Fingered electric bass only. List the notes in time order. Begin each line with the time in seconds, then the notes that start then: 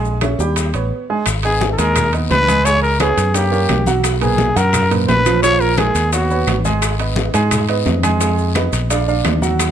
Already playing: A#1
0.39 D#2
0.74 A1
1.26 G#1
1.78 D#2
2.30 C#2
3.17 F#2
3.70 B1
4.56 F#2
5.09 A#1
5.95 D#2
6.47 G#1
7.34 G#2
7.86 F2
8.73 A#1
9.25 D#2